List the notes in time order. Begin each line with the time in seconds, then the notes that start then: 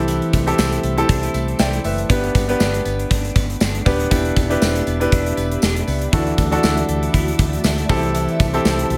Already playing: C2 A3 C4 E4 G4 A4
0.08 E3, closed hi-hat, tambourine
0.22 closed hi-hat
0.33 C2 A3, kick, closed hi-hat, tambourine
0.46 C4 E4 G4 A4, closed hi-hat
0.58 C2 E4, snare, tambourine
0.72 closed hi-hat
0.83 C2 A3, closed hi-hat
0.97 C4 E4 G4 A4, closed hi-hat
1.09 C2 D4, kick, closed hi-hat
1.23 E4, closed hi-hat
1.34 C2 A3, closed hi-hat, tambourine
1.48 closed hi-hat
1.59 C2 E4 D5 G5, snare, tambourine
1.73 closed hi-hat
1.84 F#1 A3 B4 E5, open hi-hat, tambourine
1.98 closed hi-hat
2.09 G1 B3 D4 G4 B4, kick, closed hi-hat, tambourine
2.24 closed hi-hat
2.35 G1 B3, kick, closed hi-hat, tambourine
2.48 B3 D4 G4 B4, closed hi-hat
2.60 G1 D4, snare, tambourine
2.74 closed hi-hat
2.85 G1 B3, closed hi-hat, tambourine
2.99 closed hi-hat
3.11 G1 D4, kick, closed hi-hat, tambourine
3.25 closed hi-hat
3.36 G1 B3, kick, closed hi-hat, tambourine
3.50 closed hi-hat
3.60 G1 D4, snare, tambourine
3.75 closed hi-hat
3.85 D#1 B3 D4 G4 B4, kick, open hi-hat, tambourine
4.00 closed hi-hat
4.10 E1 B3 D4 E4 G4 B4 D5 E5 B5, kick, closed hi-hat, tambourine
4.25 closed hi-hat
4.36 E1 B3, kick, closed hi-hat, tambourine
4.50 D4 E4 G4 B4, closed hi-hat
4.62 E1 C4, snare, tambourine
4.76 D4, closed hi-hat
4.87 E1 B3, closed hi-hat, tambourine
5.00 D4 E4 G4 B4, closed hi-hat
5.12 E1 D4, kick, closed hi-hat, tambourine
5.26 closed hi-hat
5.37 E1 B3, closed hi-hat, tambourine
5.52 closed hi-hat
5.62 E1 D4, snare, tambourine
5.76 closed hi-hat
5.87 C#2 B3, open hi-hat, tambourine
6.02 closed hi-hat
6.12 D2 E3 D4 E4 F#4 A4 D5 E5 A5, kick, closed hi-hat, tambourine
6.27 closed hi-hat
6.38 D2 A3, kick, closed hi-hat, tambourine
6.51 D4 E4 F#4 A4, closed hi-hat
6.63 D2 E4, snare, tambourine
6.77 closed hi-hat
6.89 D2 A3, closed hi-hat
7.03 closed hi-hat
7.14 D2 E4, kick, closed hi-hat, tambourine
7.28 closed hi-hat
7.39 D2 A3, kick, closed hi-hat, tambourine
7.53 closed hi-hat
7.64 D2 E4, snare, tambourine
7.78 closed hi-hat
7.89 C2 E3 C4 E4 G4 A4 C5 A5, kick, open hi-hat, tambourine
8.03 closed hi-hat
8.15 E3, closed hi-hat, tambourine
8.28 closed hi-hat
8.40 C2 A3, kick, closed hi-hat, tambourine
8.53 C4 E4 G4 A4, closed hi-hat
8.65 C2 E4, snare, tambourine
8.79 closed hi-hat
8.90 C2 A3, closed hi-hat